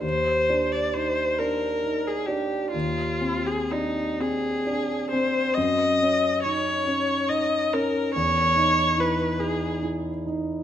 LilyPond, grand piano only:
\new Staff \with { instrumentName = "Grand piano" } { \time 6/8 \key aes \lydian \tempo 4. = 45 ees,8 d'8 ees'8 d'8 ees'8 d'8 | ees,8 c'8 d'8 c'8 d'8 c'8 | \key fis \major fis,8 cis'8 dis'8 cis'8 dis'8 cis'8 | e,8 dis'8 e'8 dis'8 e'8 dis'8 | }